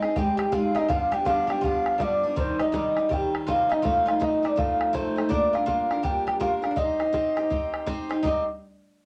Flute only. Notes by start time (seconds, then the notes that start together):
Already playing: D#5
0.16 G5
0.39 G5
0.49 G5
0.53 F5
0.76 D#5
0.89 F5
1.13 G5
1.26 F5
1.50 G5
1.63 F5
2.01 D5
2.38 C5
2.61 D#5
2.76 D#5
3.13 G5
3.49 F5
3.72 D#5
3.85 F5
4.09 F5
4.22 D#5
4.45 D5
4.58 F5
4.94 C5
5.30 D5
5.53 F5
5.67 F5
6.03 G5
6.26 G5
6.40 F5
6.76 D#5
8.24 D#5